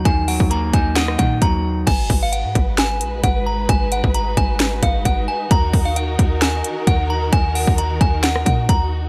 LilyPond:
<<
  \new Staff \with { instrumentName = "Synth bell" } { \time 4/4 \key aes \dorian \tempo 4 = 132 aes''8 ges''8 bes''8 aes''8 ges''8 ges''8 bes''4 | aes''8. f''16 ges''4 aes''4 ges''8 bes''8 | aes''8 ges''8 bes''8 aes''4 f''8 ges''8 aes''8 | bes''8. f''16 ges''4 aes''4 ges''8 bes''8 |
aes''8 ges''8 bes''8 aes''8 ges''8 ges''8 bes''4 | }
  \new Staff \with { instrumentName = "String section" } { \time 4/4 \key aes \dorian << { r1 | <aes ces''>1~ | <aes ces''>1 | <ees bes'>1~ |
<ees bes'>1 | } \\ { r1 | <ees' ges'>1~ | <ees' ges'>1~ | <ees' ges'>1~ |
<ees' ges'>1 | } >> }
  \new Staff \with { instrumentName = "Clean electric guitar" } { \clef bass \time 4/4 \key aes \dorian <ees ges ees''>8 ges8 bes8 ees'8 ees''8 ees8 ges4 | r1 | r1 | r1 |
r1 | }
  \new Staff \with { instrumentName = "808-style bass" } { \clef bass \time 4/4 \key aes \dorian ees,8. ees,8. ees,4 bes,8 ees,4 | aes,,8 aes,,8. aes,16 aes,,4 bes,,8 aes,,4 | aes,,8. aes,,8. aes,,4 aes,,8 aes,,8 r8 | ees,8 ees,4 ees,4 r8 ees,4 |
ees,8. ees,8. ees,4 bes,8 ees,4 | }
  \new DrumStaff \with { instrumentName = "Drums" } \drummode { \time 4/4 <hh bd>8 hho16 bd16 hh8 <hh bd>8 <hh sn>16 ss16 <hh bd>8 <hh bd>4 | <cymc hh bd>8 <hho bd>8 hh8 <hh bd>8 <hh sn>8 hh8 <hh bd>4 | <hh bd>8 hh16 bd16 hh8 <hh bd>8 <hh sn>8 <hh bd>8 <hh bd>4 | <hh bd>8 <hho bd>8 hh8 <hh bd>8 <hh sn>8 hh8 <hh bd>4 |
<hh bd>8 hho16 bd16 hh8 <hh bd>8 <hh sn>16 ss16 <hh bd>8 <hh bd>4 | }
>>